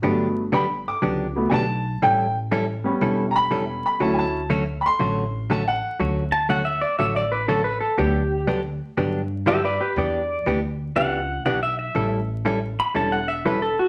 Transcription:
0.02 G1 D3 F#3 A3 B3 D4 G4
0.52 D3 F#3 B3 D4 G4 B5
0.88 D6
1.02 C#2 D3 F#3 B3 D4 G4
1.36 F#3 A3 B3
1.50 B1 D3 F#3 B3 D4 G4 G#5
1.54 A5
2.02 A1 E3 G3 C#4 E4 A4 G5
2.51 E3 G3 C#4 E4 A4
2.84 G3 B3 C#4
3.01 E1 E3 G3 C#4 E4 A4
3.31 A#5
3.36 B5
3.51 E3 G3 C#4 E4 A4
3.86 B5
4.00 D2 D3 F#3 A3 C#4 E4 F#4 A5
4.14 G#5
4.19 A5
4.50 D3 F#3 A3 C#4 F#4
4.81 B5
4.86 C6
4.99 A1 D3 F#3 A3 C#4 F#4
5.50 D3 F#3 A3 C#4 F#4 A5
5.68 F#5
5.99 D2 D3 F#3 A3 C#4 F#4
6.32 A5
6.49 D3 F#3 A3 C#4 F#4 F#5
6.65 E5
6.81 D5
6.99 A1 D3 F#3 A3 C#4 F#4 E5
7.16 D5
7.32 B4
7.48 D3 F#3 A3 C#4 F#4 A4
7.64 B4
7.81 A4
7.98 D2 D3 F#3 B3 D4 G4
8.47 D3 F#3 B3 D4 G4
8.97 G2 D3 F#3 B3 D4 G4
9.46 D3 F#3 B3 D4 G4 E5
9.65 B4 D5
9.81 G4 B4
9.96 E2 E3 B3 D4 G4 D5
10.46 D2 E3 B3 D4 G4
10.96 C#2 E3 B3 D4 G4 F#5
11.45 B1 E3 B3 D4 G4 F#5
11.63 E5
11.79 E5
11.95 A1 E3 G3 C#4 E4 A4
12.45 E3 G3 C#4 E4 A4
12.80 B5
12.94 E1 E3 G3 C#4 E4 A4 A5
13.12 F#5
13.28 E5
13.45 E3 G3 C#4 E4 A4 B4
13.62 A4
13.79 F#4

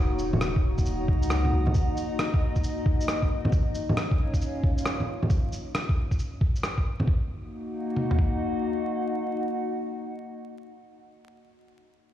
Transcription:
Already playing: D#1 A#3 D#4 F#4 C#5 D#5 F#5
0.19 shaker
0.33 low bongo
0.41 cross-stick, shaker
0.56 kick
0.78 kick, shaker
0.86 shaker
1.08 C#2, kick
1.16 D#5
1.23 shaker
1.30 cross-stick, shaker
1.45 low bongo
1.53 C#2
1.67 low bongo
1.74 kick, shaker
1.97 shaker
2.19 cross-stick, shaker
2.34 kick
2.56 kick, shaker
2.64 shaker
2.86 kick
3.01 shaker
3.08 cross-stick, shaker
3.23 kick
3.45 low bongo
3.52 kick, shaker
3.71 C#4 C#5, shaker
3.89 low bongo
3.96 F5, cross-stick, shaker
4.11 kick
4.34 F4, kick, shaker
4.41 shaker
4.64 kick
4.78 shaker
4.86 cross-stick, shaker
5.00 low bongo
5.23 low bongo
5.30 kick, shaker
5.52 shaker
5.75 cross-stick, shaker
5.89 kick
6.11 kick, shaker
6.19 shaker
6.41 kick
6.56 shaker
6.63 cross-stick, shaker
6.78 kick
7.00 low bongo
7.08 A#3, kick
7.17 D#4
7.25 F#4 D#5
7.36 F#5
7.96 mid tom
8.11 floor tom
8.19 kick

